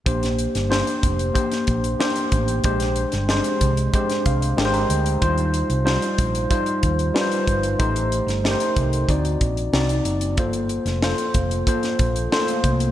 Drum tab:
HH |xxxx-xxxxxxx-xxx|xxxx-xxxxxxx-xxx|xxxx-xxxxxxx-xxx|xxxx-xxxxxxx-xxx|
SD |-o-oo----o--o---|-o-oo----o--o---|----o-------o---|---oo-------o---|
BD |o-----o-o-o---o-|o-----o-o-o-----|o-----o-o-o---o-|o-----o-o-o-----|

HH |xxxx-xxxxxxx-xxx|
SD |---oo----o--o---|
BD |o-----o-o-o---o-|